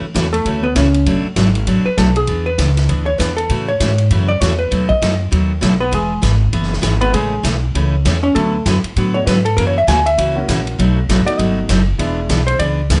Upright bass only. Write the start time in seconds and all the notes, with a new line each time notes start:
0.01 muted upright bass stroke
0.15 E2
0.45 D2
0.76 C#2
1.06 F#1
1.24 muted upright bass stroke
1.36 G#1
1.67 A1
1.85 muted upright bass stroke
1.98 B1
2.27 E2
2.58 C#2
2.89 D2
3.19 E2
3.50 A2
3.80 G#2
4.10 F#2
4.41 E2
4.72 D#2
5.02 F#2
5.32 D#2
5.62 B1
5.92 E1
6.23 G#1
6.53 F#1
6.83 G#1
7.14 A1
7.44 B1
7.75 C#2
8.05 E2
8.35 D2
8.66 F#2
8.83 muted upright bass stroke
8.96 A2
9.27 G#2
9.57 F#2
9.87 D2
10.18 C#2
10.48 A#1
10.79 B1
11.09 A1
11.26 muted upright bass stroke
11.39 G1
11.69 F#1
11.99 E1
12.29 B1
12.59 C#2
12.90 D2